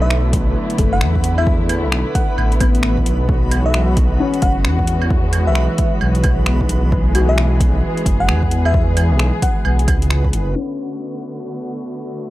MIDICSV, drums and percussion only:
0, 0, Header, 1, 2, 480
1, 0, Start_track
1, 0, Tempo, 454545
1, 1551, Time_signature, 4, 2, 24, 8
1, 12989, End_track
2, 0, Start_track
2, 0, Title_t, "Drums"
2, 110, Note_on_c, 9, 26, 109
2, 216, Note_off_c, 9, 26, 0
2, 350, Note_on_c, 9, 36, 111
2, 350, Note_on_c, 9, 42, 61
2, 455, Note_off_c, 9, 42, 0
2, 456, Note_off_c, 9, 36, 0
2, 739, Note_on_c, 9, 42, 32
2, 828, Note_off_c, 9, 42, 0
2, 828, Note_on_c, 9, 42, 55
2, 830, Note_on_c, 9, 36, 112
2, 934, Note_off_c, 9, 42, 0
2, 936, Note_off_c, 9, 36, 0
2, 1067, Note_on_c, 9, 26, 111
2, 1173, Note_off_c, 9, 26, 0
2, 1219, Note_on_c, 9, 36, 66
2, 1307, Note_on_c, 9, 42, 56
2, 1324, Note_off_c, 9, 36, 0
2, 1412, Note_off_c, 9, 42, 0
2, 1456, Note_on_c, 9, 75, 60
2, 1550, Note_on_c, 9, 36, 124
2, 1562, Note_off_c, 9, 75, 0
2, 1656, Note_off_c, 9, 36, 0
2, 1788, Note_on_c, 9, 42, 53
2, 1788, Note_on_c, 9, 75, 63
2, 1894, Note_off_c, 9, 42, 0
2, 1894, Note_off_c, 9, 75, 0
2, 2030, Note_on_c, 9, 26, 108
2, 2135, Note_off_c, 9, 26, 0
2, 2271, Note_on_c, 9, 36, 107
2, 2271, Note_on_c, 9, 42, 57
2, 2377, Note_off_c, 9, 36, 0
2, 2377, Note_off_c, 9, 42, 0
2, 2513, Note_on_c, 9, 75, 64
2, 2619, Note_off_c, 9, 75, 0
2, 2660, Note_on_c, 9, 42, 31
2, 2751, Note_off_c, 9, 42, 0
2, 2751, Note_on_c, 9, 42, 55
2, 2751, Note_on_c, 9, 75, 57
2, 2752, Note_on_c, 9, 36, 107
2, 2856, Note_off_c, 9, 42, 0
2, 2856, Note_off_c, 9, 75, 0
2, 2857, Note_off_c, 9, 36, 0
2, 2901, Note_on_c, 9, 42, 31
2, 2987, Note_on_c, 9, 26, 107
2, 3007, Note_off_c, 9, 42, 0
2, 3093, Note_off_c, 9, 26, 0
2, 3141, Note_on_c, 9, 36, 62
2, 3233, Note_on_c, 9, 42, 55
2, 3247, Note_off_c, 9, 36, 0
2, 3338, Note_off_c, 9, 42, 0
2, 3472, Note_on_c, 9, 36, 124
2, 3578, Note_off_c, 9, 36, 0
2, 3711, Note_on_c, 9, 42, 55
2, 3711, Note_on_c, 9, 75, 65
2, 3817, Note_off_c, 9, 42, 0
2, 3817, Note_off_c, 9, 75, 0
2, 3950, Note_on_c, 9, 26, 106
2, 4056, Note_off_c, 9, 26, 0
2, 4190, Note_on_c, 9, 42, 56
2, 4192, Note_on_c, 9, 36, 106
2, 4296, Note_off_c, 9, 42, 0
2, 4297, Note_off_c, 9, 36, 0
2, 4579, Note_on_c, 9, 42, 29
2, 4668, Note_off_c, 9, 42, 0
2, 4668, Note_on_c, 9, 42, 54
2, 4671, Note_on_c, 9, 36, 111
2, 4773, Note_off_c, 9, 42, 0
2, 4777, Note_off_c, 9, 36, 0
2, 4907, Note_on_c, 9, 26, 105
2, 5012, Note_off_c, 9, 26, 0
2, 5060, Note_on_c, 9, 36, 61
2, 5147, Note_on_c, 9, 42, 52
2, 5165, Note_off_c, 9, 36, 0
2, 5253, Note_off_c, 9, 42, 0
2, 5296, Note_on_c, 9, 75, 58
2, 5391, Note_on_c, 9, 36, 122
2, 5402, Note_off_c, 9, 75, 0
2, 5496, Note_off_c, 9, 36, 0
2, 5625, Note_on_c, 9, 42, 55
2, 5625, Note_on_c, 9, 75, 68
2, 5731, Note_off_c, 9, 42, 0
2, 5731, Note_off_c, 9, 75, 0
2, 5865, Note_on_c, 9, 26, 101
2, 5970, Note_off_c, 9, 26, 0
2, 6105, Note_on_c, 9, 42, 57
2, 6110, Note_on_c, 9, 36, 105
2, 6211, Note_off_c, 9, 42, 0
2, 6216, Note_off_c, 9, 36, 0
2, 6346, Note_on_c, 9, 75, 70
2, 6452, Note_off_c, 9, 75, 0
2, 6493, Note_on_c, 9, 42, 29
2, 6585, Note_off_c, 9, 42, 0
2, 6585, Note_on_c, 9, 42, 52
2, 6585, Note_on_c, 9, 75, 59
2, 6590, Note_on_c, 9, 36, 101
2, 6691, Note_off_c, 9, 42, 0
2, 6691, Note_off_c, 9, 75, 0
2, 6696, Note_off_c, 9, 36, 0
2, 6824, Note_on_c, 9, 26, 101
2, 6930, Note_off_c, 9, 26, 0
2, 6978, Note_on_c, 9, 36, 62
2, 7067, Note_on_c, 9, 42, 53
2, 7084, Note_off_c, 9, 36, 0
2, 7173, Note_off_c, 9, 42, 0
2, 7310, Note_on_c, 9, 36, 118
2, 7415, Note_off_c, 9, 36, 0
2, 7549, Note_on_c, 9, 42, 56
2, 7549, Note_on_c, 9, 75, 69
2, 7655, Note_off_c, 9, 42, 0
2, 7655, Note_off_c, 9, 75, 0
2, 7791, Note_on_c, 9, 26, 101
2, 7897, Note_off_c, 9, 26, 0
2, 8030, Note_on_c, 9, 36, 104
2, 8032, Note_on_c, 9, 42, 57
2, 8135, Note_off_c, 9, 36, 0
2, 8138, Note_off_c, 9, 42, 0
2, 8421, Note_on_c, 9, 42, 30
2, 8510, Note_on_c, 9, 36, 101
2, 8513, Note_off_c, 9, 42, 0
2, 8513, Note_on_c, 9, 42, 57
2, 8615, Note_off_c, 9, 36, 0
2, 8619, Note_off_c, 9, 42, 0
2, 8751, Note_on_c, 9, 26, 108
2, 8856, Note_off_c, 9, 26, 0
2, 8900, Note_on_c, 9, 36, 57
2, 8991, Note_on_c, 9, 42, 53
2, 9005, Note_off_c, 9, 36, 0
2, 9096, Note_off_c, 9, 42, 0
2, 9138, Note_on_c, 9, 75, 62
2, 9231, Note_on_c, 9, 36, 115
2, 9244, Note_off_c, 9, 75, 0
2, 9337, Note_off_c, 9, 36, 0
2, 9470, Note_on_c, 9, 42, 58
2, 9470, Note_on_c, 9, 75, 69
2, 9576, Note_off_c, 9, 42, 0
2, 9576, Note_off_c, 9, 75, 0
2, 9710, Note_on_c, 9, 26, 104
2, 9815, Note_off_c, 9, 26, 0
2, 9951, Note_on_c, 9, 36, 100
2, 9952, Note_on_c, 9, 42, 56
2, 10057, Note_off_c, 9, 36, 0
2, 10057, Note_off_c, 9, 42, 0
2, 10190, Note_on_c, 9, 75, 71
2, 10295, Note_off_c, 9, 75, 0
2, 10341, Note_on_c, 9, 42, 33
2, 10431, Note_on_c, 9, 36, 101
2, 10432, Note_off_c, 9, 42, 0
2, 10432, Note_on_c, 9, 42, 57
2, 10432, Note_on_c, 9, 75, 67
2, 10536, Note_off_c, 9, 36, 0
2, 10538, Note_off_c, 9, 42, 0
2, 10538, Note_off_c, 9, 75, 0
2, 10583, Note_on_c, 9, 42, 33
2, 10671, Note_on_c, 9, 26, 101
2, 10688, Note_off_c, 9, 42, 0
2, 10776, Note_off_c, 9, 26, 0
2, 10819, Note_on_c, 9, 36, 61
2, 10911, Note_on_c, 9, 42, 57
2, 10925, Note_off_c, 9, 36, 0
2, 11016, Note_off_c, 9, 42, 0
2, 12989, End_track
0, 0, End_of_file